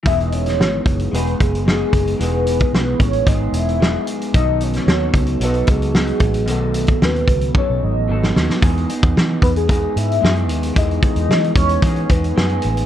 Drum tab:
HH |xxxx--xxxxxx--xx|x-xx--xxx-xx--xx|x-xx--xxxxxx-xxx|x-xx-xxx--------|
SD |---oo-------o---|----o-------o---|---oo-------o---|----o--------ooo|
BD |o-----o---o---o-|---o--o-o-------|o-----o---o---o-|---o--o-o-------|

HH |xxxx--xxx-xx-xxx|xxxx-xxxxxxx-xxx|
SD |----o-------o---|----o-------o---|
BD |o--o--o-o-------|o-o---o-o-o-----|